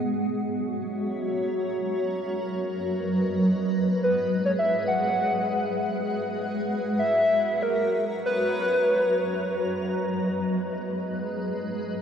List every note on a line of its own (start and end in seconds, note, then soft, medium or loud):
0.00 2.39 F#4 medium
0.00 0.70 G#4 medium
0.00 0.64 F#5 medium
0.22 2.39 C#5 medium
0.80 2.39 A#5 medium
1.71 3.40 F#3 medium
1.86 3.40 A#4 medium
2.05 6.78 B4 medium
2.49 4.61 D#5 medium
3.40 6.78 G#3 medium
3.73 7.46 G#4 medium
4.03 4.42 B4 medium
4.17 7.46 F#5 medium
4.45 4.51 C#5 medium
4.59 4.86 E5 loud
4.88 5.68 F#5 loud
6.78 9.15 F#4 medium
6.95 8.94 A#5 medium
6.99 7.64 E5 loud
7.15 9.15 C#5 medium
7.62 8.05 A#4 loud
8.26 9.70 B4 loud
8.47 10.16 F#3 medium
9.08 12.02 B4 medium
9.25 10.74 D#5 medium
10.16 12.02 G#3 medium
10.47 12.02 G#4 medium